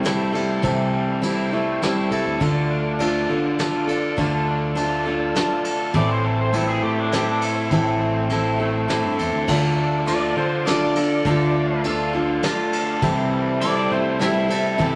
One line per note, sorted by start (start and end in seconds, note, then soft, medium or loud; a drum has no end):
0.00 0.34 C3 medium
0.00 0.60 C3 medium
0.00 0.64 G3 medium
0.00 0.33 G3 medium
0.00 1.52 A3 medium
0.00 0.33 C4 medium
0.00 5.90 A4 medium
0.00 2.37 E5 medium
0.00 2.37 G5 medium
0.00 2.38 C6 medium
0.05 0.32 E4 medium
0.05 0.31 A4 medium
0.05 snare medium
0.05 ride medium
0.33 0.62 G3 soft
0.33 0.62 C4 soft
0.33 0.63 E4 soft
0.33 0.63 A4 soft
0.33 ride medium
0.62 1.78 C2 medium
0.62 1.22 C3 medium
0.62 1.22 E3 medium
0.62 1.20 G3 medium
0.62 1.21 C4 medium
0.62 1.22 E4 medium
0.62 1.23 A4 medium
0.62 kick medium
0.62 ride medium
0.93 2.41 G3 medium
1.22 1.52 G3 medium
1.22 1.52 C4 medium
1.22 1.51 E4 medium
1.22 1.50 A4 medium
1.22 ride medium
1.51 1.81 G3 soft
1.51 2.40 A3 medium
1.51 1.82 C4 soft
1.51 1.82 E4 soft
1.51 1.81 A4 soft
1.82 2.11 G3 medium
1.82 2.11 C4 medium
1.82 2.10 E4 medium
1.82 2.09 A4 medium
1.82 snare medium
1.82 ride medium
2.11 2.24 C2 medium
2.11 2.40 G3 soft
2.11 2.41 C4 soft
2.11 2.41 E4 soft
2.11 2.40 A4 soft
2.11 ride medium
2.26 2.39 D2 medium
2.40 3.25 D2 medium
2.40 2.99 D3 medium
2.40 2.99 A3 medium
2.40 2.99 D4 medium
2.40 3.00 F4 medium
2.40 3.01 A4 medium
2.40 5.91 D5 medium
2.40 5.91 F5 medium
2.40 4.16 D6 medium
2.40 kick medium
2.40 ride medium
2.71 4.18 D4 medium
2.99 3.29 A3 medium
2.99 3.29 D4 medium
2.99 3.29 F4 medium
2.99 3.28 A4 medium
2.99 ride medium
3.29 4.14 D3 medium
3.29 4.17 D3 medium
3.29 3.58 D4 soft
3.29 3.59 F4 soft
3.29 3.59 A4 soft
3.59 3.88 A3 medium
3.59 3.88 D4 medium
3.59 3.88 F4 medium
3.59 3.86 A4 medium
3.59 snare medium
3.59 ride medium
3.88 4.17 D4 soft
3.88 4.17 F4 soft
3.88 4.17 A4 medium
3.88 ride medium
4.17 5.32 D2 medium
4.17 4.76 D3 medium
4.17 4.75 A3 medium
4.17 4.75 D4 medium
4.17 4.76 F4 medium
4.17 4.77 A4 medium
4.17 5.93 E6 medium
4.17 kick medium
4.17 ride medium
4.48 5.95 D4 medium
4.75 5.05 A3 medium
4.75 5.06 D4 medium
4.75 5.05 F4 medium
4.75 5.04 A4 medium
4.75 ride medium
5.05 5.95 D3 medium
5.05 5.34 D4 soft
5.05 5.35 F4 soft
5.05 5.35 A4 medium
5.35 5.94 A3 medium
5.35 5.94 D4 medium
5.35 5.95 F4 medium
5.35 5.95 A4 medium
5.35 snare medium
5.35 ride medium
5.65 7.40 A4 medium
5.65 ride medium
5.94 6.79 A1 medium
5.94 6.53 A2 medium
5.94 6.53 E3 medium
5.94 6.52 A3 medium
5.94 6.52 C4 medium
5.94 6.53 E4 medium
5.94 6.55 A4 medium
5.94 9.45 A4 medium
5.94 9.45 C5 medium
5.94 6.10 D5 loud
5.94 9.45 E5 medium
5.94 9.45 C6 medium
5.94 kick loud
5.94 ride soft
6.09 6.24 C5 medium
6.24 7.72 C4 medium
6.24 6.39 A4 medium
6.41 6.54 C5 medium
6.53 7.11 A3 medium
6.53 7.12 C4 medium
6.53 7.12 E4 medium
6.53 7.14 A4 medium
6.53 6.68 A4 medium
6.53 ride medium
6.69 6.83 G#4 medium
6.82 7.67 A2 medium
6.82 8.30 A3 medium
6.82 6.98 G4 medium
7.00 7.13 D4 medium
7.12 7.71 A3 medium
7.12 7.71 C4 medium
7.12 7.71 E4 medium
7.12 7.28 G4 medium
7.12 7.73 A4 medium
7.12 snare medium
7.12 ride medium
7.28 7.42 D4 medium
7.41 7.71 E4 medium
7.41 8.89 A4 medium
7.41 ride medium
7.71 8.85 A1 medium
7.71 8.30 A2 medium
7.71 8.31 E3 medium
7.71 8.28 A3 medium
7.71 8.30 C4 medium
7.71 8.30 E4 medium
7.71 8.31 A4 medium
7.71 kick medium
7.71 ride medium
8.00 9.48 C4 medium
8.30 8.60 A3 medium
8.30 8.60 C4 medium
8.30 8.59 E4 medium
8.30 8.58 A4 medium
8.30 ride medium
8.59 8.87 A3 soft
8.59 8.87 C4 soft
8.59 8.88 E4 soft
8.59 8.89 A4 soft
8.88 9.02 A2 medium
8.88 9.47 A3 medium
8.88 9.48 C4 medium
8.88 9.48 E4 medium
8.88 9.48 A4 medium
8.88 snare medium
8.88 ride medium
9.04 9.18 G2 medium
9.19 9.32 E2 medium
9.19 9.48 A4 medium
9.19 ride soft
9.33 9.47 D2 medium
9.48 10.33 D2 medium
9.48 10.07 D3 medium
9.48 10.06 A3 medium
9.48 10.06 D4 medium
9.48 10.07 F4 medium
9.48 14.95 A4 medium
9.48 10.09 A4 medium
9.48 12.99 D5 medium
9.48 12.98 F5 medium
9.48 11.23 D6 medium
9.48 kick medium
9.48 crash medium
9.78 11.25 D4 medium
10.06 10.36 A3 medium
10.06 10.37 D4 medium
10.06 10.36 F4 medium
10.06 10.35 A4 medium
10.06 10.21 D5 medium
10.06 ride medium
10.22 10.36 D5 medium
10.36 11.21 D3 medium
10.36 11.25 D3 medium
10.36 10.65 D4 soft
10.36 10.66 F4 soft
10.36 10.66 A4 soft
10.36 10.66 C5 medium
10.65 10.95 A3 medium
10.65 10.96 D4 medium
10.65 10.96 F4 medium
10.65 10.94 A4 medium
10.65 11.80 D5 medium
10.65 snare medium
10.65 ride medium
10.95 11.25 D4 soft
10.95 11.25 F4 soft
10.95 11.25 A4 soft
10.95 ride medium
11.25 12.39 D2 loud
11.25 11.84 D3 medium
11.25 11.84 A3 medium
11.25 11.84 D4 medium
11.25 11.85 F4 medium
11.25 11.86 A4 medium
11.25 13.01 C6 medium
11.25 kick medium
11.25 ride medium
11.56 13.03 D4 medium
11.84 12.14 A3 medium
11.84 12.14 D4 medium
11.84 12.13 F4 medium
11.84 12.12 A4 medium
11.84 ride medium
12.13 13.02 D3 medium
12.13 12.43 D4 soft
12.13 12.43 F4 medium
12.13 12.43 A4 soft
12.43 13.02 A3 medium
12.43 13.02 D4 medium
12.43 13.03 F4 medium
12.43 13.03 A4 medium
12.43 snare medium
12.43 ride medium
12.73 13.35 A4 medium
12.73 ride medium
13.02 13.87 C2 medium
13.02 13.61 C3 medium
13.02 13.61 E3 medium
13.02 13.60 G3 medium
13.02 13.61 C4 medium
13.02 13.62 E4 medium
13.02 13.64 A4 medium
13.02 14.95 E5 medium
13.02 14.95 G5 medium
13.02 14.95 C6 medium
13.02 kick loud
13.02 ride medium
13.32 14.79 G3 medium
13.61 13.91 G3 medium
13.61 13.91 C4 medium
13.61 13.90 E4 medium
13.61 13.89 A4 medium
13.61 13.76 D5 loud
13.61 ride medium
13.77 13.90 D5 medium
13.90 14.75 C3 medium
13.90 14.18 G3 soft
13.90 14.95 A3 medium
13.90 14.19 C4 soft
13.90 14.20 E4 soft
13.90 14.20 A4 soft
13.90 14.19 C5 medium
14.19 14.49 G3 medium
14.19 14.49 C4 medium
14.19 14.48 E4 medium
14.19 14.47 A4 medium
14.19 14.95 E5 loud
14.19 snare medium
14.19 ride medium
14.48 14.77 G3 soft
14.48 14.78 C4 soft
14.48 14.79 E4 soft
14.48 14.78 A4 soft
14.48 ride medium
14.78 14.95 C2 loud
14.78 14.95 C3 medium
14.78 14.95 E3 medium
14.78 14.95 G3 medium
14.78 14.95 C4 medium
14.78 14.95 E4 medium
14.78 14.95 A4 medium
14.78 kick medium
14.78 ride medium